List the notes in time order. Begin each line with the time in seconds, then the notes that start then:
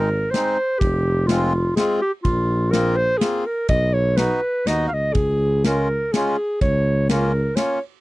Already playing: G#1 A#4
0.31 G#3 C4 C5, snare, ride
0.35 D#4
0.79 F1 G4, kick, ride
1.26 G#3 C4 F4, snare, ride
1.75 G#3 C4 F4 G#4, snare, ride
2.02 G4
2.23 A#1 F4, kick, ride
2.71 A#3 C4 F4 A#4, snare, ride
2.96 C5
3.18 A#3 C4 F4 G#4, snare, ride
3.46 A#4
3.69 B1 D#5, kick, ride
3.93 C#5
4.16 B3 D#4 F#4 B4, snare, ride
4.65 D#2 B3 D#4 F#4 D#5, snare, ride
4.88 C#2 F5
4.93 D#5
5.13 C#2 G#4, kick, ride
5.64 G#3 C#4 F4 A#4, snare, ride
6.12 G#3 C#4 F4 G#4, snare, ride
6.61 C#2 C#5, kick, ride
7.09 A#3 C#4 F4 A#4, snare, ride
7.56 A#3 C#4 F4 C#5, snare, ride